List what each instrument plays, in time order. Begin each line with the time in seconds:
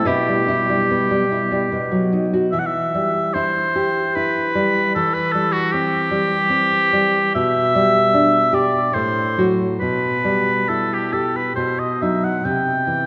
0.05 nylon-string guitar B2 E4 B4, oboe G4
0.28 nylon-string guitar G3
0.48 nylon-string guitar E4
0.69 nylon-string guitar G3
0.90 nylon-string guitar B3
1.11 nylon-string guitar G3
1.32 nylon-string guitar E4
1.52 nylon-string guitar G3
1.72 nylon-string guitar B2
1.91 nylon-string guitar F#3
2.13 nylon-string guitar D#4
2.33 nylon-string guitar F#4
2.52 nylon-string guitar E3, oboe E5
2.59 oboe F#5
2.66 oboe E5
2.94 nylon-string guitar G3
3.33 nylon-string guitar E4, oboe C5
3.76 nylon-string guitar G4
4.15 nylon-string guitar E4, oboe B4
4.55 nylon-string guitar G3
4.95 nylon-string guitar E3, oboe A4
5.14 oboe B4
5.32 nylon-string guitar G3, oboe A4
5.52 oboe F#4
5.72 nylon-string guitar C4, oboe G4
6.11 nylon-string guitar G3
6.50 nylon-string guitar C4
6.93 nylon-string guitar G3
7.34 nylon-string guitar B2, oboe E5
7.75 nylon-string guitar G3
8.14 nylon-string guitar D4
8.53 nylon-string guitar G4, oboe D5
8.93 nylon-string guitar A2, oboe C5
9.37 nylon-string guitar F#3 F#4
9.79 nylon-string guitar B2, oboe B4
10.24 nylon-string guitar G3
10.69 nylon-string guitar E4, oboe A4
10.93 oboe G4
11.12 nylon-string guitar G4, oboe A4
11.36 oboe B4
11.55 nylon-string guitar B2, oboe C5
11.79 oboe D#5
12.02 nylon-string guitar F#3 D#4, oboe E5
12.24 oboe F#5
12.44 nylon-string guitar C3, oboe G5
12.87 nylon-string guitar E3